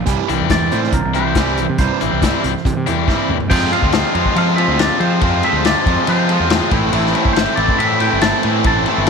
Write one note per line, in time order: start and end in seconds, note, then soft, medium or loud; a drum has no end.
0.06 0.17 C2 medium
0.06 0.27 C3 medium
0.06 0.27 E3 loud
0.06 0.28 G3 loud
0.06 kick loud
0.06 closed hi-hat medium
0.29 0.39 C2 medium
0.29 0.49 C3 medium
0.29 0.49 E3 medium
0.29 0.50 G3 medium
0.29 0.51 C4 medium
0.29 0.50 E4 loud
0.29 closed hi-hat medium
0.40 0.70 E2 medium
0.49 0.70 C3 medium
0.49 0.79 E3 medium
0.49 0.79 G3 medium
0.49 0.79 C4 medium
0.49 0.79 E4 medium
0.49 0.73 D5 loud
0.49 kick loud
0.49 snare loud
0.49 closed hi-hat medium
0.71 0.92 A2 medium
0.71 0.92 C3 loud
0.71 0.93 E3 loud
0.71 0.93 G3 medium
0.71 0.92 C5 medium
0.71 closed hi-hat medium
0.83 snare soft
0.92 1.03 C2 medium
0.92 1.13 C3 medium
0.92 1.13 E3 medium
0.92 1.14 A#4 medium
0.92 kick loud
0.92 closed hi-hat medium
1.05 1.65 C2 medium
1.14 1.35 C3 medium
1.14 1.35 E3 medium
1.14 1.35 G3 medium
1.14 1.36 C4 loud
1.14 1.36 E4 loud
1.14 1.76 C5 medium
1.14 closed hi-hat medium
1.35 1.57 C3 medium
1.35 1.64 E3 medium
1.35 1.64 G3 medium
1.35 1.64 C4 medium
1.35 1.65 E4 medium
1.35 kick loud
1.35 snare loud
1.35 closed hi-hat medium
1.57 1.78 C3 medium
1.57 1.78 E3 medium
1.57 closed hi-hat medium
1.70 1.78 C3 loud
1.78 1.89 C2 loud
1.78 2.00 C3 medium
1.78 2.00 E3 medium
1.78 2.00 G3 loud
1.78 3.04 C5 medium
1.78 kick loud
1.78 closed hi-hat medium
2.01 2.11 A1 medium
2.01 2.20 C3 medium
2.01 2.22 E3 medium
2.01 2.22 G3 medium
2.01 2.23 C4 medium
2.01 2.22 E4 medium
2.01 closed hi-hat medium
2.13 2.32 C2 medium
2.22 2.42 C3 medium
2.22 2.50 E3 medium
2.22 2.51 G3 medium
2.22 2.51 C4 medium
2.22 2.51 E4 medium
2.22 kick loud
2.22 snare loud
2.22 closed hi-hat medium
2.44 2.54 C2 medium
2.44 2.63 C3 medium
2.44 2.63 E3 medium
2.44 closed hi-hat medium
2.57 snare soft
2.65 2.75 C3 medium
2.65 2.85 C3 medium
2.65 2.85 E3 medium
2.65 kick loud
2.65 closed hi-hat medium
2.77 2.86 C3 medium
2.87 3.07 E2 medium
2.87 3.06 C3 medium
2.87 3.06 E3 medium
2.87 3.07 G3 medium
2.87 3.07 C4 medium
2.87 3.08 E4 loud
2.87 closed hi-hat medium
3.08 3.28 C3 medium
3.08 3.36 E3 medium
3.08 3.36 G3 medium
3.08 3.36 C4 medium
3.08 3.36 E4 medium
3.08 kick loud
3.08 snare medium
3.29 3.49 E2 medium
3.29 3.49 C3 medium
3.29 3.49 E3 medium
3.29 mid tom medium
3.40 floor tom medium
3.50 3.71 F2 medium
3.50 3.70 F2 loud
3.50 3.71 C3 medium
3.50 3.72 F3 loud
3.50 3.72 G#3 loud
3.50 3.73 C4 loud
3.50 3.73 F4 loud
3.50 3.72 G5 loud
3.50 kick loud
3.50 crash loud
3.71 3.91 F2 medium
3.71 3.91 C3 medium
3.71 3.92 F3 medium
3.71 3.92 G#3 loud
3.71 3.93 C4 loud
3.71 3.94 F4 medium
3.71 4.37 F5 loud
3.71 ride medium
3.82 4.02 D2 medium
3.82 kick medium
3.91 4.12 F2 medium
3.91 4.13 C3 loud
3.91 4.13 F3 medium
3.91 4.14 G#3 medium
3.91 4.15 C4 medium
3.91 4.14 F4 loud
3.91 snare loud
3.91 ride loud
4.13 4.33 F2 loud
4.13 4.25 F2 loud
4.13 4.34 C3 medium
4.13 4.34 F3 loud
4.13 4.35 G#3 loud
4.13 4.36 C4 loud
4.13 4.35 F4 loud
4.13 ride medium
4.25 kick medium
4.34 4.56 F2 medium
4.34 4.56 C3 medium
4.34 4.57 F3 medium
4.34 4.66 F3 loud
4.34 4.57 G#3 medium
4.34 4.58 C4 medium
4.34 4.58 F4 medium
4.34 ride loud
4.38 4.55 F5 loud
4.56 4.77 F2 loud
4.56 4.77 C3 loud
4.56 4.78 F3 loud
4.56 4.79 G#3 loud
4.56 4.80 C4 loud
4.56 4.79 F4 loud
4.56 4.79 E5 medium
4.56 ride medium
4.68 4.88 D2 medium
4.78 4.99 F2 medium
4.78 4.99 C3 medium
4.78 5.00 F3 medium
4.78 5.00 G#3 loud
4.78 5.01 C4 medium
4.78 5.01 F4 loud
4.78 5.00 D5 medium
4.78 snare loud
4.78 ride loud
5.00 5.20 F2 medium
5.00 5.20 C3 medium
5.00 5.20 F3 medium
5.00 5.21 F3 medium
5.00 5.21 G#3 medium
5.00 5.23 C4 loud
5.00 5.22 F4 medium
5.00 5.44 C5 medium
5.00 ride medium
5.21 5.42 F2 loud
5.21 5.42 C3 loud
5.21 5.43 F3 loud
5.21 5.44 G#3 loud
5.21 5.45 C4 loud
5.21 5.44 F4 loud
5.21 kick loud
5.21 ride loud
5.43 5.62 F2 medium
5.43 5.63 C3 medium
5.43 5.63 F3 loud
5.43 5.64 G#3 loud
5.43 5.65 C4 loud
5.43 5.65 F4 medium
5.43 5.57 E5 medium
5.43 ride medium
5.53 5.73 D2 medium
5.57 5.64 C5 medium
5.63 5.85 F2 medium
5.63 5.85 C3 medium
5.63 5.86 F3 medium
5.63 5.86 G#3 medium
5.63 5.87 C4 medium
5.63 5.87 F4 loud
5.63 6.08 D5 medium
5.63 snare loud
5.63 ride loud
5.86 6.07 F2 medium
5.86 5.96 F2 loud
5.86 6.07 C3 loud
5.86 6.08 F3 loud
5.86 6.08 G#3 loud
5.86 6.09 C4 loud
5.86 6.09 F4 loud
5.86 kick medium
5.86 ride medium
6.07 6.27 F2 medium
6.07 6.28 C3 medium
6.07 6.37 F3 loud
6.07 6.28 F3 loud
6.07 6.29 G#3 loud
6.07 6.30 C4 medium
6.07 6.30 F4 loud
6.07 6.68 C5 medium
6.07 ride loud
6.29 6.48 F2 loud
6.29 6.49 C3 loud
6.29 6.49 F3 loud
6.29 6.50 G#3 loud
6.29 6.51 C4 loud
6.29 6.51 F4 loud
6.29 ride medium
6.40 6.59 E2 medium
6.49 6.70 F2 medium
6.49 6.70 C3 medium
6.49 6.71 F3 medium
6.49 6.71 G#3 medium
6.49 6.73 C4 medium
6.49 6.71 F4 medium
6.49 snare loud
6.49 ride loud
6.71 6.92 A1 medium
6.71 6.93 A2 medium
6.71 6.93 E3 loud
6.71 6.94 A3 loud
6.71 6.95 C4 loud
6.71 6.95 E4 loud
6.71 kick loud
6.71 ride medium
6.93 7.13 A1 loud
6.93 7.13 A2 loud
6.93 7.14 E3 loud
6.93 7.14 A3 loud
6.93 7.15 C4 loud
6.93 7.16 E4 loud
6.93 ride loud
7.06 snare soft
7.14 7.36 A2 loud
7.14 7.36 E3 loud
7.14 7.37 A3 loud
7.14 7.37 C4 medium
7.14 7.37 E4 loud
7.14 ride medium
7.25 7.45 G1 medium
7.25 kick medium
7.33 7.56 A2 medium
7.33 7.57 E3 loud
7.33 7.54 C5 loud
7.33 ride loud
7.37 7.58 A3 loud
7.37 7.58 C4 medium
7.37 7.58 E4 loud
7.37 snare loud
7.56 7.67 A1 loud
7.56 7.77 A2 medium
7.56 7.78 E3 loud
7.56 7.79 A3 loud
7.56 7.80 C4 loud
7.56 7.79 E4 loud
7.56 7.76 D5 medium
7.56 ride medium
7.68 kick medium
7.78 7.99 A2 medium
7.78 8.08 A2 loud
7.78 7.99 E3 medium
7.78 8.00 A3 medium
7.78 8.01 C4 medium
7.78 8.01 E4 medium
7.78 8.00 E5 loud
7.78 ride loud
8.00 8.21 A2 loud
8.00 8.21 E3 loud
8.00 8.22 A3 loud
8.00 8.23 C4 loud
8.00 8.22 E4 loud
8.00 8.21 G5 medium
8.00 ride medium
8.13 8.32 G1 medium
8.21 8.42 A2 medium
8.21 8.43 E3 medium
8.21 8.43 A3 medium
8.21 8.44 C4 medium
8.21 8.44 E4 loud
8.21 8.61 A5 loud
8.21 snare loud
8.21 ride loud
8.43 8.63 A2 medium
8.43 8.64 E3 medium
8.43 8.65 A3 medium
8.43 8.66 C4 medium
8.43 8.65 E4 loud
8.43 ride medium
8.64 8.84 A1 loud
8.64 8.85 A2 medium
8.64 8.85 E3 loud
8.64 8.86 A3 loud
8.64 8.87 C4 loud
8.64 8.87 E4 loud
8.64 9.10 A5 loud
8.64 kick loud
8.64 ride loud
8.86 9.06 A2 medium
8.86 9.07 E3 medium
8.86 9.08 A3 medium
8.86 9.09 C4 medium
8.86 9.09 E4 loud
8.86 ride medium
8.98 9.10 G1 medium
9.06 ride loud